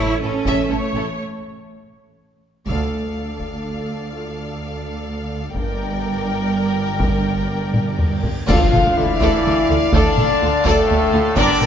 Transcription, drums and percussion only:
0, 0, Header, 1, 3, 480
1, 0, Start_track
1, 0, Tempo, 488998
1, 1170, Time_signature, 3, 2, 24, 8
1, 3099, Tempo, 480000
1, 6459, Tempo, 491803
1, 8859, Tempo, 480000
1, 11545, End_track
2, 0, Start_track
2, 0, Title_t, "Taiko and cinematic ensemble drums"
2, 446, Note_on_c, 9, 41, 65
2, 544, Note_off_c, 9, 41, 0
2, 2610, Note_on_c, 9, 41, 33
2, 2708, Note_off_c, 9, 41, 0
2, 3334, Note_on_c, 9, 41, 25
2, 3434, Note_off_c, 9, 41, 0
2, 5493, Note_on_c, 9, 41, 49
2, 5593, Note_off_c, 9, 41, 0
2, 6931, Note_on_c, 9, 41, 82
2, 7028, Note_off_c, 9, 41, 0
2, 7652, Note_on_c, 9, 47, 58
2, 7750, Note_off_c, 9, 47, 0
2, 7894, Note_on_c, 9, 45, 67
2, 7992, Note_off_c, 9, 45, 0
2, 8136, Note_on_c, 9, 43, 68
2, 8234, Note_off_c, 9, 43, 0
2, 8377, Note_on_c, 9, 41, 98
2, 8475, Note_off_c, 9, 41, 0
2, 8611, Note_on_c, 9, 47, 55
2, 8709, Note_off_c, 9, 47, 0
2, 9085, Note_on_c, 9, 41, 86
2, 9185, Note_off_c, 9, 41, 0
2, 9813, Note_on_c, 9, 41, 100
2, 9913, Note_off_c, 9, 41, 0
2, 10058, Note_on_c, 9, 47, 57
2, 10158, Note_off_c, 9, 47, 0
2, 10530, Note_on_c, 9, 41, 85
2, 10630, Note_off_c, 9, 41, 0
2, 11250, Note_on_c, 9, 41, 100
2, 11350, Note_off_c, 9, 41, 0
2, 11500, Note_on_c, 9, 47, 58
2, 11545, Note_off_c, 9, 47, 0
2, 11545, End_track
3, 0, Start_track
3, 0, Title_t, "Drums"
3, 8381, Note_on_c, 9, 35, 76
3, 8381, Note_on_c, 9, 49, 67
3, 8479, Note_off_c, 9, 35, 0
3, 8479, Note_off_c, 9, 49, 0
3, 11545, End_track
0, 0, End_of_file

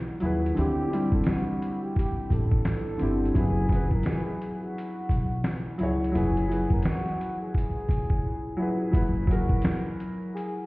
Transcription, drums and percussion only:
0, 0, Header, 1, 2, 480
1, 0, Start_track
1, 0, Tempo, 697674
1, 387, Time_signature, 4, 2, 24, 8
1, 7336, End_track
2, 0, Start_track
2, 0, Title_t, "Drums"
2, 139, Note_on_c, 9, 42, 52
2, 208, Note_off_c, 9, 42, 0
2, 317, Note_on_c, 9, 42, 41
2, 386, Note_off_c, 9, 42, 0
2, 392, Note_on_c, 9, 42, 74
2, 461, Note_off_c, 9, 42, 0
2, 641, Note_on_c, 9, 42, 79
2, 710, Note_off_c, 9, 42, 0
2, 770, Note_on_c, 9, 36, 92
2, 839, Note_off_c, 9, 36, 0
2, 851, Note_on_c, 9, 42, 75
2, 870, Note_on_c, 9, 38, 112
2, 920, Note_off_c, 9, 42, 0
2, 939, Note_off_c, 9, 38, 0
2, 1116, Note_on_c, 9, 42, 64
2, 1185, Note_off_c, 9, 42, 0
2, 1350, Note_on_c, 9, 36, 93
2, 1369, Note_on_c, 9, 42, 86
2, 1418, Note_off_c, 9, 36, 0
2, 1438, Note_off_c, 9, 42, 0
2, 1585, Note_on_c, 9, 36, 80
2, 1595, Note_on_c, 9, 42, 62
2, 1654, Note_off_c, 9, 36, 0
2, 1664, Note_off_c, 9, 42, 0
2, 1730, Note_on_c, 9, 36, 84
2, 1799, Note_off_c, 9, 36, 0
2, 1823, Note_on_c, 9, 38, 97
2, 1837, Note_on_c, 9, 42, 78
2, 1892, Note_off_c, 9, 38, 0
2, 1906, Note_off_c, 9, 42, 0
2, 2059, Note_on_c, 9, 42, 53
2, 2128, Note_off_c, 9, 42, 0
2, 2238, Note_on_c, 9, 42, 40
2, 2306, Note_on_c, 9, 36, 109
2, 2307, Note_off_c, 9, 42, 0
2, 2311, Note_on_c, 9, 42, 72
2, 2375, Note_off_c, 9, 36, 0
2, 2380, Note_off_c, 9, 42, 0
2, 2539, Note_on_c, 9, 36, 93
2, 2562, Note_on_c, 9, 42, 73
2, 2608, Note_off_c, 9, 36, 0
2, 2631, Note_off_c, 9, 42, 0
2, 2690, Note_on_c, 9, 36, 85
2, 2759, Note_off_c, 9, 36, 0
2, 2773, Note_on_c, 9, 42, 77
2, 2793, Note_on_c, 9, 38, 107
2, 2842, Note_off_c, 9, 42, 0
2, 2861, Note_off_c, 9, 38, 0
2, 3038, Note_on_c, 9, 42, 58
2, 3107, Note_off_c, 9, 42, 0
2, 3290, Note_on_c, 9, 42, 90
2, 3359, Note_off_c, 9, 42, 0
2, 3505, Note_on_c, 9, 36, 80
2, 3515, Note_on_c, 9, 42, 74
2, 3573, Note_off_c, 9, 36, 0
2, 3584, Note_off_c, 9, 42, 0
2, 3744, Note_on_c, 9, 38, 88
2, 3758, Note_on_c, 9, 42, 77
2, 3812, Note_off_c, 9, 38, 0
2, 3826, Note_off_c, 9, 42, 0
2, 3981, Note_on_c, 9, 42, 54
2, 4050, Note_off_c, 9, 42, 0
2, 4157, Note_on_c, 9, 42, 43
2, 4226, Note_off_c, 9, 42, 0
2, 4232, Note_on_c, 9, 42, 75
2, 4301, Note_off_c, 9, 42, 0
2, 4383, Note_on_c, 9, 42, 45
2, 4452, Note_off_c, 9, 42, 0
2, 4483, Note_on_c, 9, 42, 79
2, 4552, Note_off_c, 9, 42, 0
2, 4611, Note_on_c, 9, 36, 92
2, 4680, Note_off_c, 9, 36, 0
2, 4696, Note_on_c, 9, 42, 80
2, 4715, Note_on_c, 9, 38, 111
2, 4765, Note_off_c, 9, 42, 0
2, 4784, Note_off_c, 9, 38, 0
2, 4855, Note_on_c, 9, 38, 34
2, 4924, Note_off_c, 9, 38, 0
2, 4960, Note_on_c, 9, 42, 63
2, 5029, Note_off_c, 9, 42, 0
2, 5190, Note_on_c, 9, 36, 92
2, 5213, Note_on_c, 9, 42, 96
2, 5259, Note_off_c, 9, 36, 0
2, 5281, Note_off_c, 9, 42, 0
2, 5426, Note_on_c, 9, 36, 82
2, 5439, Note_on_c, 9, 42, 72
2, 5495, Note_off_c, 9, 36, 0
2, 5508, Note_off_c, 9, 42, 0
2, 5571, Note_on_c, 9, 36, 87
2, 5640, Note_off_c, 9, 36, 0
2, 6146, Note_on_c, 9, 36, 108
2, 6154, Note_on_c, 9, 42, 73
2, 6215, Note_off_c, 9, 36, 0
2, 6223, Note_off_c, 9, 42, 0
2, 6380, Note_on_c, 9, 36, 84
2, 6404, Note_on_c, 9, 42, 76
2, 6449, Note_off_c, 9, 36, 0
2, 6473, Note_off_c, 9, 42, 0
2, 6531, Note_on_c, 9, 36, 98
2, 6600, Note_off_c, 9, 36, 0
2, 6616, Note_on_c, 9, 42, 82
2, 6636, Note_on_c, 9, 38, 109
2, 6685, Note_off_c, 9, 42, 0
2, 6705, Note_off_c, 9, 38, 0
2, 6881, Note_on_c, 9, 42, 56
2, 6949, Note_off_c, 9, 42, 0
2, 7133, Note_on_c, 9, 42, 93
2, 7202, Note_off_c, 9, 42, 0
2, 7336, End_track
0, 0, End_of_file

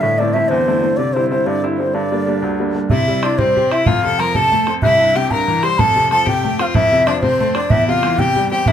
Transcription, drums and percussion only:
0, 0, Header, 1, 2, 480
1, 0, Start_track
1, 0, Tempo, 320000
1, 39, Time_signature, 6, 3, 24, 8
1, 13086, End_track
2, 0, Start_track
2, 0, Title_t, "Bodhran"
2, 4345, Note_on_c, 9, 64, 72
2, 4495, Note_off_c, 9, 64, 0
2, 4615, Note_on_c, 9, 64, 25
2, 4765, Note_off_c, 9, 64, 0
2, 4842, Note_on_c, 9, 64, 61
2, 4992, Note_off_c, 9, 64, 0
2, 5077, Note_on_c, 9, 64, 86
2, 5227, Note_off_c, 9, 64, 0
2, 5350, Note_on_c, 9, 64, 30
2, 5500, Note_off_c, 9, 64, 0
2, 5572, Note_on_c, 9, 64, 59
2, 5722, Note_off_c, 9, 64, 0
2, 5795, Note_on_c, 9, 64, 83
2, 5945, Note_off_c, 9, 64, 0
2, 6060, Note_on_c, 9, 64, 25
2, 6210, Note_off_c, 9, 64, 0
2, 6294, Note_on_c, 9, 64, 55
2, 6444, Note_off_c, 9, 64, 0
2, 6523, Note_on_c, 9, 64, 71
2, 6673, Note_off_c, 9, 64, 0
2, 6776, Note_on_c, 9, 64, 29
2, 6926, Note_off_c, 9, 64, 0
2, 7004, Note_on_c, 9, 64, 51
2, 7154, Note_off_c, 9, 64, 0
2, 7234, Note_on_c, 9, 64, 63
2, 7384, Note_off_c, 9, 64, 0
2, 7500, Note_on_c, 9, 64, 24
2, 7650, Note_off_c, 9, 64, 0
2, 7959, Note_on_c, 9, 64, 69
2, 8109, Note_off_c, 9, 64, 0
2, 8218, Note_on_c, 9, 64, 26
2, 8368, Note_off_c, 9, 64, 0
2, 8445, Note_on_c, 9, 64, 49
2, 8595, Note_off_c, 9, 64, 0
2, 8685, Note_on_c, 9, 64, 69
2, 8835, Note_off_c, 9, 64, 0
2, 8943, Note_on_c, 9, 64, 22
2, 9093, Note_off_c, 9, 64, 0
2, 9168, Note_on_c, 9, 64, 49
2, 9318, Note_off_c, 9, 64, 0
2, 9402, Note_on_c, 9, 64, 81
2, 9552, Note_off_c, 9, 64, 0
2, 9663, Note_on_c, 9, 64, 31
2, 9813, Note_off_c, 9, 64, 0
2, 9892, Note_on_c, 9, 64, 61
2, 10042, Note_off_c, 9, 64, 0
2, 10121, Note_on_c, 9, 64, 79
2, 10271, Note_off_c, 9, 64, 0
2, 10380, Note_on_c, 9, 64, 26
2, 10530, Note_off_c, 9, 64, 0
2, 10606, Note_on_c, 9, 64, 60
2, 10756, Note_off_c, 9, 64, 0
2, 10839, Note_on_c, 9, 64, 75
2, 10989, Note_off_c, 9, 64, 0
2, 11096, Note_on_c, 9, 64, 31
2, 11246, Note_off_c, 9, 64, 0
2, 11322, Note_on_c, 9, 64, 67
2, 11472, Note_off_c, 9, 64, 0
2, 11554, Note_on_c, 9, 64, 84
2, 11704, Note_off_c, 9, 64, 0
2, 11812, Note_on_c, 9, 64, 25
2, 11962, Note_off_c, 9, 64, 0
2, 12045, Note_on_c, 9, 64, 62
2, 12195, Note_off_c, 9, 64, 0
2, 12274, Note_on_c, 9, 64, 75
2, 12424, Note_off_c, 9, 64, 0
2, 12536, Note_on_c, 9, 64, 28
2, 12686, Note_off_c, 9, 64, 0
2, 12990, Note_on_c, 9, 64, 67
2, 13086, Note_off_c, 9, 64, 0
2, 13086, End_track
0, 0, End_of_file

